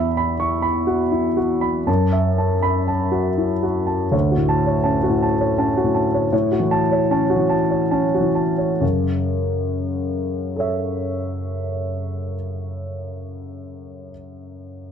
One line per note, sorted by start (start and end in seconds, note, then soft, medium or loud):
0.00 1.84 E2 soft
0.00 0.31 E5 soft
0.00 0.17 B5 soft
0.17 0.55 B5 soft
0.40 0.64 C#6 soft
0.62 1.02 B5 soft
0.87 1.27 F#4 soft
1.12 1.37 E4 soft
1.37 1.77 F#4 soft
1.61 1.87 B5 soft
1.87 4.09 F#2 soft
1.87 2.28 A5 soft
2.13 2.53 E5 soft
2.38 2.79 A5 soft
2.62 2.88 B5 soft
2.88 3.28 A5 soft
3.12 3.53 F#4 soft
3.38 3.63 E4 soft
3.63 4.03 F#4 soft
3.87 4.12 A5 soft
4.12 6.28 D2 soft
4.12 4.41 C#5 soft
4.31 4.60 F#4 soft
4.37 4.75 A2 soft
4.49 4.78 A5 soft
4.67 4.96 C#5 soft
4.84 5.24 C#4 soft
4.84 5.14 A5 soft
5.03 5.33 F#4 soft
5.09 5.49 A2 soft
5.22 5.52 A5 soft
5.40 5.70 C#5 soft
5.58 5.97 C#4 soft
5.58 5.88 A5 soft
5.77 6.07 F#4 soft
5.84 6.23 A2 soft
5.95 6.24 A5 soft
6.14 6.31 C#5 soft
6.32 8.77 A2 soft
6.32 6.63 C#5 soft
6.52 6.82 F#4 soft
6.60 6.99 E3 soft
6.71 7.01 A5 medium
6.92 7.22 C#5 soft
7.11 7.53 C#4 soft
7.11 7.42 A5 soft
7.30 7.62 F#4 soft
7.36 7.80 E3 soft
7.49 7.83 A5 soft
7.71 8.05 C#5 soft
7.91 8.39 C#4 soft
7.91 8.27 A5 soft
8.14 8.50 F#4 soft
8.20 8.69 E3 soft
8.35 8.72 A5 soft
8.58 8.81 C#5 soft
8.81 12.34 F#2 soft
8.81 12.34 C#3 soft
10.56 14.10 A4 soft
10.56 14.12 C#5 soft
10.56 14.13 E5 soft